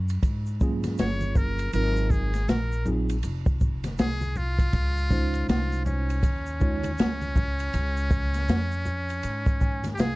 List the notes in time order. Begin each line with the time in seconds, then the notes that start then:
Already playing: F#2
0.08 ride, shaker
0.23 G#2, kick, ride, shaker
0.46 shaker
0.60 F#3 A#3 C#4 F4 G#4, kick, shaker
0.83 snare, ride, high conga, shaker
0.98 G1 C#5, snare, hi-hat pedal, ride, shaker
1.21 high conga, shaker
1.35 A#4, kick, low conga, shaker
1.58 ride, shaker
1.73 G#1 F#3 C4 D#4 F4 A#4, ride, shaker
1.96 shaker
2.10 G#4, kick, high conga, shaker
2.34 snare, ride, shaker
2.49 A#1 A#4, snare, hi-hat pedal, ride, high conga, shaker
2.72 shaker
2.85 F#3 C4 D#4 F4 G#4, low conga, shaker
3.09 ride, shaker
3.23 F1, ride, shaker
3.46 kick, shaker
3.60 kick, shaker
3.84 snare, ride, high conga, shaker
3.98 C2 G#4, snare, hi-hat pedal, ride, shaker
4.21 high conga, shaker
4.36 F4, low conga, shaker
4.59 kick, ride, shaker
4.73 C#2, kick, ride, shaker
4.97 shaker
5.10 G#3 C#4 D#4 F4 C5, kick, high conga, shaker
5.34 ride, shaker
5.49 C2 F4, snare, hi-hat pedal, ride, high conga, shaker
5.72 shaker
5.85 C#4, low conga, shaker
6.10 ride, shaker
6.23 D#2, kick, ride, shaker
6.46 shaker
6.60 G#3 C#4 D#4 F4 C#5, kick, shaker
6.83 ride, high conga, shaker
6.98 C#2, snare, hi-hat pedal, ride, shaker
7.22 high conga, shaker
7.36 kick, low conga, shaker
7.59 ride, shaker
7.73 C#2, ride, shaker
7.97 shaker
8.11 kick, high conga, shaker
8.34 snare, ride, shaker
8.48 F2, snare, hi-hat pedal, ride, high conga, shaker
8.71 shaker
8.85 low conga, shaker
9.09 ride, shaker
9.23 G#2, ride, shaker
9.46 kick, shaker
9.61 G#5, kick, shaker
9.84 snare, ride, high conga, shaker
9.94 G4, shaker
9.99 C2 G#4 F5, snare, hi-hat pedal, ride